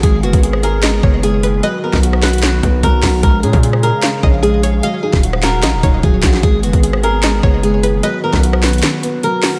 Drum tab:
HH |x---x-x-x---x---x-------x---x---|x-------x---xxxxx---x---x---o---|x---x-x-x---x---x-------x---x---|x-------x---x---x---x---x---x---|
CP |----------------x---------------|------------x---x-----------x---|----------------x---------------|------------x---x-----------x---|
SD |----------r-----o---------------|------o---r-o---o-----------o---|----------r-----o---------------|------o---r-o---o-----------o-o-|
BD |o-----o-------------o-----------|------o-------------o---o---o---|o-----o-------------o-----------|------o-------------o---o---o---|

HH |x---x-x-x---x---x-------x---x---|x-------x---xxxxx---x---x---o---|
CP |----------------x---------------|------------x---x-----------x---|
SD |----------r-----o---------------|------o---r-o---o-----------o---|
BD |o-----o-------------o-----------|------o-------------------------|